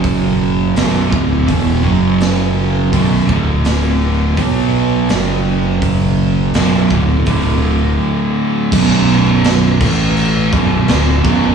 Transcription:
<<
  \new Staff \with { instrumentName = "Distorted electric guitar" } { \clef bass \time 4/4 \key b \minor \tempo 4 = 83 <fis, cis fis>4 <b,, fis, b,>8 <d, a, d>8 <e, b, e>8 <fis, cis fis>4. | <b,, fis, b,>8 <d, a, d>4. <b, fis b>4 <fis, cis fis>4~ | <fis, cis fis>4 <b,, fis, b,>8 <d, a, d>8 <d, a, d>2 | <b,, fis, b,>4. <a, e a>4 <b,, fis, b,>8 <d, a, d>8 <b,, fis, b,>8 | }
  \new Staff \with { instrumentName = "Fingered electric bass" } { \clef bass \time 4/4 \key b \minor fis,,4 b,,,8 d,,8 e,,8 fis,,4. | b,,,8 d,,4. b,,4 fis,,4~ | fis,,4 b,,,8 d,,8 d,,4 r4 | b,,,4. a,,4 b,,,8 d,,8 b,,,8 | }
  \new DrumStaff \with { instrumentName = "Drums" } \drummode { \time 4/4 <hho bd>4 <hho sn>8 bd8 <hho bd>4 <hho sn>4 | <hho bd>8 bd8 <hho sn>4 <hho bd>4 <hho sn>4 | <hho bd>4 <hho sn>8 bd8 <hho bd>4 r4 | <cymc bd>8 cymc8 <cymc sn>8 <cymc bd>8 cymc8 <cymc bd>8 <cymc sn>8 <cymc bd>8 | }
>>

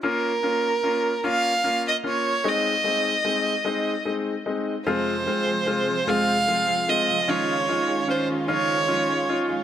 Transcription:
<<
  \new Staff \with { instrumentName = "Violin" } { \time 6/8 \key f \minor \tempo 4. = 50 bes'4. f''8. ees''16 des''8 | ees''2 r4 | c''4. f''4 ees''8 | des''4 c''8 des''4 r8 | }
  \new Staff \with { instrumentName = "Grand piano" } { \time 6/8 \key f \minor <bes des' f'>8 <bes des' f'>8 <bes des' f'>8 <bes des' f'>8 <bes des' f'>8 <bes des' f'>8 | <aes c' ees'>8 <aes c' ees'>8 <aes c' ees'>8 <aes c' ees'>8 <aes c' ees'>8 <aes c' ees'>8 | <aes c' f'>8 <aes c' f'>8 <aes c' f'>8 <aes c' f'>8 <aes c' f'>8 <aes c' f'>8 | <des' ees' f'>8 <des' ees' f'>8 <des' ees' f'>8 <des' ees' f'>8 <des' ees' f'>8 <des' ees' f'>8 | }
  \new Staff \with { instrumentName = "Steel-string acoustic guitar" } { \clef bass \time 6/8 \key f \minor r2. | r2. | <f, c f aes c' aes'>8 <f aes c' aes'>16 <f aes c' aes'>8 <f aes c' aes'>16 <f, c f aes c' aes'>8 <f aes c' aes'>16 <f aes c' aes'>8 <f aes c' aes'>16 | <des f aes ees' aes'>8 <f aes ees' aes'>16 <aes ees' aes'>8 <aes ees' aes'>16 <des f aes ees' aes'>8 <f aes ees' aes'>16 <aes ees' aes'>8 <aes ees' aes'>16 | }
  \new Staff \with { instrumentName = "String section" } { \clef bass \time 6/8 \key f \minor << { r2. | r2. | f'2.~ | f'2. | } \\ { r2. | r2. | <c aes>2. | <ees des'>2. | } >> }
>>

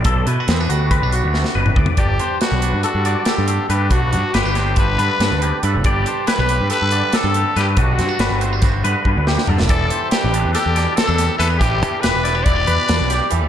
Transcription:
<<
  \new Staff \with { instrumentName = "Clean electric guitar" } { \time 9/8 \key g \major \tempo 4. = 93 a'8 b'4 fis'8 b'8 fis'4 b'8 d''8 | d''8 c''8 b'4 a'8 d''8 a'4 b'8 | fis'4 b'8 c''4 b'4 g'8 a'8 | d''8 c''8 b'4 a'8 d''8 a'4 b'8 |
fis'4 b'8 c''4 b'4 g'8 a'8 | d''8 c''8 b'4 a'8 d''8 a'4 b'8 | g'4 b'8 d''4 b'4 g'8 a'8 | }
  \new Staff \with { instrumentName = "Trumpet" } { \time 9/8 \key g \major r1 r8 | g'4 fis'4 fis'4 g'4 g'8 | fis'4 g'4 b'2 r8 | g'4 b'4 b'4 a'4 g'8 |
fis'2 r2 r8 | a'4 g'4 g'4 a'4 a'8 | g'4 b'4 d''2 r8 | }
  \new Staff \with { instrumentName = "Clean electric guitar" } { \time 9/8 \key g \major << { r8 e'16 fis'16 c'16 d'16 fis'8 c'16 d'16 fis'2 | d'8 d'8 d'8 d'8 d'8 d'8 d'8 d'8 d'8 | d'8 d'8 c'16 d'16 d'8 d'8 d'8 d'8 d'8 b'8 | d'8 d'8 e'16 g'16 g'8 g'8 g'8 d'8 g'8 d'8 |
d'8 c'16 d'16 d'8 c'16 d'16 fis'8 b'2 | g'8 g'8 d'8 d'8 d'8 d'8 c'16 d'16 g'8 e'16 g'16 | d'8 d'8 g'8 e'16 g'16 e'16 g'16 b'8 d'8 g'8 g'8 | } \\ { b,4. g4. c8 b,8 a,8 | g,4 g4. d4. g,8 | g,4 g4. d4. g,8 | g,4 g4. d4. g,8 |
g,4 g4. d8 b,8 c8 d8 | e4 g4. b,4. e8 | e4 g4. b,4. e8 | } >> }
  \new Staff \with { instrumentName = "Picked electric bass" } { \clef bass \time 9/8 \key g \major b,,8 b,16 r16 e,8 d,8. b,,8 d,8 r16 fis,,8 d,16 r16 | g,,8 r8. b,,8 g,16 r16 g,8 r8 g,8 r16 g,8 | b,,8 g,16 r16 g,,16 g,,8. g,,8 g,16 r16 g,16 d,8 r16 g,16 fis,,16 | g,,8 r8. b,,8 g,16 r16 g,8 r8 g,8 r16 g,8 |
b,,8 g,16 r16 g,,16 g,,8. g,,8 g,16 r16 g,16 d,8 r16 g,16 fis,,16 | e,,8 r8. a,,8 e,16 r16 e,8 r8 e,8 r16 e,8 | a,,8 e,16 r16 e,,16 e,,8. e,,8 e,16 r16 e,16 b,,8 r16 e,16 d,16 | }
  \new DrumStaff \with { instrumentName = "Drums" } \drummode { \time 9/8 <hh bd>8 hh8 <hh sn>8 hh8 <hh bd>8 hh8 sn16 sn8 toml16 bd16 tomfh16 | <hh bd>8 hh8 <hh sn>8 hh8 hh8 hh8 <hh sn>8 hh8 hh8 | <hh bd>8 hh8 <hh sn>8 <hh sn>8 <hh bd>8 hh8 <hh sn>8 hh8 hh8 | <hh bd>8 hh8 <hh sn>8 hh8 hh8 hh8 <hh sn>8 hh8 <hh sn>8 |
<hh bd>8 <hh sn>8 <hh sn>8 hh8 <hh bd sn>8 hh8 bd8 sn16 sn16 tomfh16 sn16 | <hh bd>8 hh8 <hh sn>8 hh8 <hh sn>8 <hh sn>8 <hh sn>8 <hh sn>8 <hh sn>8 | <hh bd>8 hh8 <hh sn>8 <hh sn>8 <hh bd>8 hh8 <hh sn>8 <hh sn>8 hh8 | }
>>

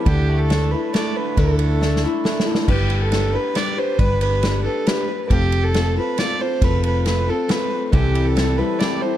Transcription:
<<
  \new Staff \with { instrumentName = "Fiddle" } { \time 3/4 \key g \mixolydian \tempo 4 = 137 g'8. a'8. b'8 d''8 b'8 | a'2 r4 | g'8. a'8. b'8 d''8 c''8 | b'8 b'4 a'8 b'8. r16 |
g'8. a'8. b'8 d''8 c''8 | b'8 b'8 b'8 a'8 b'8. r16 | g'8. a'8. b'8 d''8 c''8 | }
  \new Staff \with { instrumentName = "Steel-string acoustic guitar" } { \time 3/4 \key g \mixolydian <d a d' e' a'>4 <a d' e' a'>8 <d' e' a'>8 <a d' e' a'>4 | <d a d' e' a'>4 <a d' e' a'>8 <d' e' a'>8 <a d' e' a'>8 <d' e' a'>8 | <g d' g' b'>4 <g d' g' b'>8 <d' g' b'>8 <g d' g' b'>8 <d' g' b'>8 | <g d' g' b'>4 <g d' g' b'>8 <d' g' b'>8 <g d' g' b'>8 <d' g' b'>8 |
<f a c' f' a'>4 <a c' f' a'>8 <c' f' a'>8 <a c' f' a'>8 <c' f' a'>8 | <f a c' f' a'>4 <a c' f' a'>8 <c' f' a'>8 <a c' f' a'>4 | <c e g c' e' a'>4 <g c' e' a'>8 <g c' e' a'>8 <g c' e' a'>8 <g c' e' a'>8 | }
  \new Staff \with { instrumentName = "Clean electric guitar" } { \time 3/4 \key g \mixolydian d8 a8 a'8 e'8 a8 d8 | d8 a8 a'8 e'8 a8 d8 | r2. | r2. |
r2. | r2. | c8 g8 a'8 e'8 g8 e8 | }
  \new Staff \with { instrumentName = "Fingered electric bass" } { \clef bass \time 3/4 \key g \mixolydian d,2 r4 | d,2 r4 | g,,2 r4 | g,,2 r4 |
f,,2 r4 | f,,2 r4 | c,2 r4 | }
  \new DrumStaff \with { instrumentName = "Drums" } \drummode { \time 3/4 <bd cymr>4 <cymr sn>4 <cymr sn>4 | <bd cymr>8 cymr8 \tuplet 3/2 { sn8 sn8 r8 sn8 sn8 sn8 } | <cymc bd>8 cymr8 <cymr sn>4 <cymr sn>4 | <bd cymr>8 cymr8 <cymr sn>4 <cymr sn>4 |
<bd cymr>8 cymr8 <cymr sn>4 <cymr sn>4 | <bd cymr>8 cymr8 <cymr sn>4 <cymr sn>4 | <bd cymr>8 cymr8 <cymr sn>4 <cymr sn>4 | }
>>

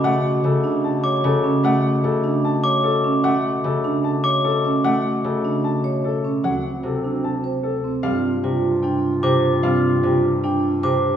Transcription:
<<
  \new Staff \with { instrumentName = "Glockenspiel" } { \time 4/4 \key d \lydian \tempo 4 = 150 r2 r8 d'''8 r4 | r2 r8 d'''8 r4 | r2 r8 d'''8 r4 | r1 |
r1 | \key c \mixolydian r2. d'''8 r8 | r2. d'''8 r8 | }
  \new Staff \with { instrumentName = "Grand piano" } { \time 4/4 \key d \lydian fis''8 r8 a'8 r8 a''8 r8 a'8 r8 | fis''8 r8 a'8 r8 a''8 r8 a'8 r8 | fis''8 r8 a'8 r8 a''8 r8 a'8 r8 | fis''8 r8 a'8 r8 a''8 r8 a'8 r8 |
fis''8 r8 a'8 r8 a''8 r8 a'8 r8 | \key c \mixolydian f''8 r8 g'8 r8 g''8 r8 g'8 r8 | f''8 r8 g'8 r8 g''8 r8 g'8 r8 | }
  \new Staff \with { instrumentName = "Clarinet" } { \time 4/4 \key d \lydian r1 | r1 | r1 | r1 |
c'2.~ c'8 r8 | \key c \mixolydian f'1~ | f'2.~ f'8 r8 | }
  \new Staff \with { instrumentName = "Vibraphone" } { \time 4/4 \key d \lydian r8 fis'8 r8 d'8 r8 cis''8 r8 cis'8 | r4. d'8 r8 cis''8 r8 cis'8 | r4. d'8 r8 cis''8 r8 cis'8 | r4. d'8 r8 cis''8 r8 cis'8 |
r4. d'8 r8 c''8 r8 c'8 | \key c \mixolydian c'8 r8 f'8 r8 d'8 r8 c''8 r8 | c'8 r8 f'8 r8 d'8 r8 c''8 r8 | }
  \new Staff \with { instrumentName = "Harp" } { \clef bass \time 4/4 \key d \lydian <cis a>4 cis2 cis4 | a4 cis2. | a4 cis2. | a4 cis2. |
fis4 c2. | \key c \mixolydian g4 c2 c4 | g4 c2 c4 | }
  \new Staff \with { instrumentName = "Bass clarinet" } { \clef bass \time 4/4 \key d \lydian b,1~ | b,1~ | b,1~ | b,1 |
d,1 | \key c \mixolydian g,1~ | g,1 | }
>>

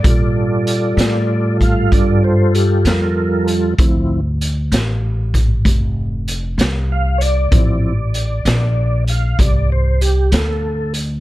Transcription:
<<
  \new Staff \with { instrumentName = "Tonewheel organ" } { \time 12/8 \key d \minor \tempo 4. = 64 << { d''2~ d''8 f''8 d''8 c''8 g'8 bes'4 r8 | r1 r4 f''8 <cis'' d''>8~ | <cis'' d''>2~ <cis'' d''>8 f''8 d''8 c''8 g'8 a'4 r8 | } \\ { <g f' a'>1. | <f c' e'>8 r1 r4. | <f c' e'>8 r1 r4. | } >> }
  \new Staff \with { instrumentName = "Upright bass" } { \clef bass \time 12/8 \key d \minor bes,4. a,4. g,4. f,4. | d,4. a,,4. f,,4. c,4. | a,,4. bes,,4. c,4. d,4. | }
  \new DrumStaff \with { instrumentName = "Drums" } \drummode { \time 12/8 <hh bd>4 hh8 <hh sn>4 <hh bd>8 <hh bd>4 hh8 <hh sn>4 hh8 | <hh bd>4 hh8 <hh sn>4 <hh bd>8 <hh bd>4 hh8 <hh sn>4 hh8 | <hh bd>4 hh8 <hh sn>4 hh8 <hh bd>4 hh8 <hh sn>4 hh8 | }
>>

